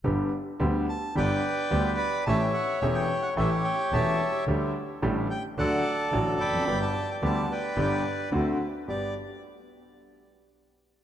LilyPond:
<<
  \new Staff \with { instrumentName = "Bandoneon" } { \time 4/4 \key g \major \tempo 4 = 109 << { r4. a''8 g''4. b''8 | a''16 g''16 fis''8 e''16 g''8 fis''16 e''8 g''8 a''8. r16 | r4. g''8 fis''4 r8 b''8~ | b''16 a''8 g''16 a''8 g''4 r4. |
d''8 r2. r8 | } \\ { r2 <b' d''>2 | <cis'' e''>2 <g' cis''>4 <cis'' e''>4 | r2 <a' d''>4. <d'' g''>8~ | <d'' g''>4. <b' d''>4. r4 |
r1 | } >> }
  \new Staff \with { instrumentName = "Grand piano" } { \clef bass \time 4/4 \key g \major <g,, g, d g b g'>8 r8 <d, d g b g'>8 r8 <g,, g, d g b g'>8 r8 <d, d g b g'>8 r8 | <a,, a, e a cis' g'>8 r8 <e,, e, e a cis' g'>8 r8 <a,, a, e a cis' g'>8 r8 <e,, e, e a cis' g'>8 r8 | <d, d g a g'>8 r8 <a,, a, d g a g'>8 r8 <d, d fis a fis'>8 r8 <a,, a, d fis a fis'>8 r32 e,32 f,32 fis,32 | <g,, g, d g b g'>8 r8 <d, d g b g'>8 r8 <g,, g, d g b g'>8 r8 <d, d a c' fis'>8 r8 |
<g, b d' g'>8 r2. r8 | }
  \new Staff \with { instrumentName = "Double bass" } { \clef bass \time 4/4 \key g \major g,,8 r8 d,8 r8 g,,8 r8 d,8 r8 | a,,8 r8 e,,8 r8 a,,8 r8 e,,8 r8 | d,8 r8 a,,8 r8 d,8 r8 a,,8 f,,8 | g,,8 r8 d,8 r8 g,,8 r8 d,8 r8 |
g,,8 r2. r8 | }
>>